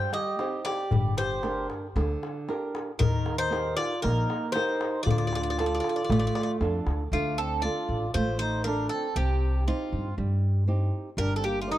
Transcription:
Already playing: nylon-string guitar G3, accordion C5, bouzouki G5
0.13 accordion G4, bouzouki D#5, darbuka tek
0.39 nylon-string guitar C4 D#4 G4, darbuka tek
0.65 accordion G4, bouzouki D5, darbuka tek
0.91 upright bass G1, nylon-string guitar G3, darbuka dum
1.17 accordion G4, bouzouki C5, darbuka tek
1.43 nylon-string guitar D4 G4 A#4, darbuka tek
1.56 darbuka tek
1.70 darbuka tek
1.96 upright bass D2, nylon-string guitar D3, darbuka tek
2.23 darbuka tek
2.48 nylon-string guitar D4 G4 A#4, darbuka tek
2.75 darbuka tek
2.99 upright bass D#2, nylon-string guitar D#3, accordion D#4, bouzouki A#4, darbuka dum
3.26 darbuka tek
3.38 accordion D#4, bouzouki C5
3.50 nylon-string guitar D#4 G4 A#4, darbuka tek
3.65 darbuka tek
3.77 accordion F4, bouzouki D5, darbuka tek
4.02 upright bass A#1, nylon-string guitar A#3, accordion D#4, bouzouki A#4, darbuka tek
4.30 darbuka tek
4.52 accordion D#4, nylon-string guitar D#4, bouzouki C5, darbuka tek
4.56 nylon-string guitar G4 A#4
4.81 darbuka tek
5.03 upright bass D2, accordion F4, bouzouki D5, darbuka dum
5.07 nylon-string guitar D3, bouzouki D5
5.18 bouzouki D5, darbuka tek
5.27 bouzouki D5
5.33 bouzouki D5, darbuka tek
5.43 bouzouki D5, darbuka tek
5.50 bouzouki D5
5.58 nylon-string guitar D4 F4 A4, bouzouki D5, darbuka tek
5.66 bouzouki D5
5.75 bouzouki D5
5.80 bouzouki D5
5.84 darbuka tek
5.89 bouzouki D5
5.96 bouzouki D5, darbuka tek
6.04 bouzouki D5
6.10 upright bass A1, nylon-string guitar A3, bouzouki D5, darbuka tek, darbuka dum
6.19 bouzouki D5, darbuka tek
6.27 bouzouki D5
6.35 bouzouki D5, darbuka tek
6.43 bouzouki D5
6.61 upright bass F2, nylon-string guitar D4 F4 A4, darbuka tek
6.74 darbuka tek
6.86 upright bass D2, darbuka tek
7.12 upright bass D2, nylon-string guitar D3, accordion A3, bouzouki F4
7.38 accordion C4, bouzouki A4
7.62 nylon-string guitar D4 F4 A4, accordion F4, bouzouki D5
7.89 upright bass A1
8.14 upright bass A1, nylon-string guitar A3, accordion F4, bouzouki C5
8.39 accordion D#4, bouzouki C5
8.64 nylon-string guitar D4 F4 A4, accordion D4, bouzouki A#4
8.89 accordion C4, bouzouki A4
9.16 upright bass C2, nylon-string guitar C3, accordion C4, bouzouki G4
9.67 nylon-string guitar C4 D#4 G4, accordion C4, bouzouki F4
9.93 upright bass G2
10.18 upright bass G2, nylon-string guitar G3
10.68 nylon-string guitar C4 D#4 G4
11.17 upright bass G1, nylon-string guitar G3, accordion D4, bouzouki A#4
11.36 accordion C4, bouzouki A4
11.44 accordion A#3, bouzouki G4
11.60 accordion A3, bouzouki F4
11.68 accordion G3, bouzouki D#4, nylon-string guitar G4 A#4 D5

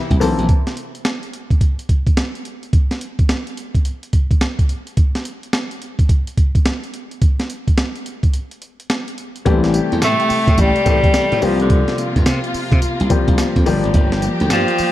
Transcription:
Already playing: string section C3 A#3 E4, grand piano E3 A#3 C4 G4
0.11 slap bass C2, kick, closed hi-hat
0.20 slap bass B1, grand piano E3 A#3 C4 A4, open hi-hat, tambourine
0.39 slap bass A#1, closed hi-hat
0.49 kick, closed hi-hat
0.67 snare, closed hi-hat
0.77 closed hi-hat
0.95 closed hi-hat
1.05 snare, closed hi-hat
1.23 closed hi-hat
1.33 closed hi-hat
1.50 kick, closed hi-hat
1.61 kick, closed hi-hat
1.79 closed hi-hat
1.89 kick, closed hi-hat
2.07 kick, closed hi-hat
2.17 snare, closed hi-hat
2.35 closed hi-hat
2.45 closed hi-hat
2.63 closed hi-hat
2.73 kick, closed hi-hat
2.91 snare, closed hi-hat
3.01 closed hi-hat
3.19 kick, closed hi-hat
3.29 snare, closed hi-hat
3.47 closed hi-hat
3.57 closed hi-hat
3.75 kick, closed hi-hat
3.85 closed hi-hat
4.03 closed hi-hat
4.13 kick, closed hi-hat
4.31 kick, closed hi-hat
4.41 snare, closed hi-hat
4.59 kick, closed hi-hat
4.69 closed hi-hat
4.87 closed hi-hat
4.97 kick, closed hi-hat
5.15 snare, closed hi-hat
5.25 closed hi-hat
5.43 closed hi-hat
5.53 snare, closed hi-hat
5.71 closed hi-hat
5.82 closed hi-hat
5.99 kick, closed hi-hat
6.09 kick, closed hi-hat
6.27 closed hi-hat
6.37 kick, closed hi-hat
6.55 kick, closed hi-hat
6.66 snare, closed hi-hat
6.84 closed hi-hat
6.94 closed hi-hat
7.11 closed hi-hat
7.22 kick, closed hi-hat
7.40 snare, closed hi-hat
7.50 closed hi-hat
7.68 kick, closed hi-hat
7.78 snare, closed hi-hat
7.96 closed hi-hat
8.06 closed hi-hat
8.23 kick, closed hi-hat
8.34 closed hi-hat
8.51 closed hi-hat
8.62 closed hi-hat
8.80 closed hi-hat
8.90 snare, closed hi-hat
9.08 closed hi-hat
9.18 closed hi-hat
9.36 closed hi-hat
9.45 slap bass A1, string section C3 A3 G4, grand piano E3 G3 A3 A#3 G4, kick, closed hi-hat
9.53 grand piano C4
9.64 snare, closed hi-hat
9.74 closed hi-hat, tambourine
9.92 slap bass E2, closed hi-hat
10.02 slap bass A2, tenor saxophone A3, snare, closed hi-hat, tambourine
10.20 closed hi-hat
10.30 muted slap bass stroke, open hi-hat, tambourine
10.47 slap bass A2, kick, closed hi-hat
10.58 slap bass A1, tenor saxophone G3, kick, closed hi-hat, tambourine
10.76 closed hi-hat
10.86 slap bass A2, grand piano E3 G3 A3 C4 G4, kick, closed hi-hat, tambourine
11.04 kick, closed hi-hat
11.14 snare, closed hi-hat, tambourine
11.32 slap bass A2, closed hi-hat
11.42 slap bass C2, grand piano E3 G3 A#3 C4 G4, tenor saxophone F3, string section A#3 F4, open hi-hat, tambourine
11.48 grand piano F3
11.60 tenor saxophone D3, closed hi-hat
11.70 kick, closed hi-hat
11.88 snare, closed hi-hat
11.98 closed hi-hat, tambourine
12.16 slap bass G2, kick, closed hi-hat
12.26 slap bass C3, snare, closed hi-hat, tambourine
12.44 closed hi-hat
12.54 muted slap bass stroke, open hi-hat, tambourine
12.72 slap bass C3, kick, closed hi-hat
12.82 muted slap bass stroke, closed hi-hat, tambourine
13.00 slap bass C2, closed hi-hat
13.10 grand piano F3 G3 A#3 C4 G4, kick, closed hi-hat, tambourine
13.28 slap bass C2, kick, closed hi-hat
13.38 snare, closed hi-hat, tambourine
13.56 slap bass F2, kick, closed hi-hat
13.66 slap bass G1, string section F3 G4, grand piano F3 G3 A#3 D4 G4, open hi-hat, tambourine
13.84 slap bass G#1, closed hi-hat
13.94 slap bass G1, kick, closed hi-hat
14.12 snare, closed hi-hat
14.22 closed hi-hat, tambourine
14.40 slap bass D2, closed hi-hat
14.50 slap bass G2, tenor saxophone F3, snare, closed hi-hat, tambourine
14.68 closed hi-hat
14.78 muted slap bass stroke, open hi-hat, tambourine

